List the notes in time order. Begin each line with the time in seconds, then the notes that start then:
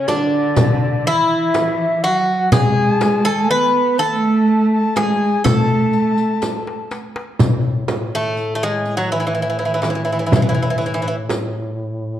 0.07 D3 D4 D5, riq, frame drum
0.56 riq, frame drum, darbuka dum
0.80 D5
1.04 E3 E4 E5, darbuka ka
1.54 riq, darbuka tek, frame drum
2.03 F#3 F#4 F#5
2.51 G#3 G#4 G#5, riq, frame drum, darbuka dum
3.01 riq, darbuka tek, frame drum
3.25 A4
3.50 B3 B4
3.98 A3 A4 A5, riq, darbuka ka
4.48 darbuka ka
4.72 A5
4.96 G#3 G#4 G#5, riq, darbuka tek, frame drum
5.44 A3 A4 A5, riq, frame drum, darbuka dum
5.93 riq, darbuka ka
6.18 riq
6.42 riq, darbuka tek, frame drum
6.67 darbuka ka
6.91 riq, darbuka tek
7.16 darbuka ka
7.39 A2, riq, frame drum, darbuka dum
7.88 riq, darbuka tek, frame drum
8.15 A3
8.37 riq
8.55 A3
8.63 G#3
8.85 riq
8.97 F#3
9.12 E3
9.20 E3
9.27 E3
9.35 E3, darbuka ka
9.42 E3
9.50 E3
9.59 E3
9.65 E3
9.74 E3
9.82 E3, riq, darbuka tek, frame drum
9.90 E3
9.95 E3
10.05 E3
10.12 E3
10.19 E3
10.26 E3
10.32 E3, riq, frame drum, darbuka dum
10.42 E3
10.49 E3
10.54 E3
10.62 E3
10.70 E3
10.78 E3, riq
10.86 E3
10.94 E3
11.02 E3, darbuka ka
11.08 E3
11.29 riq, darbuka tek, frame drum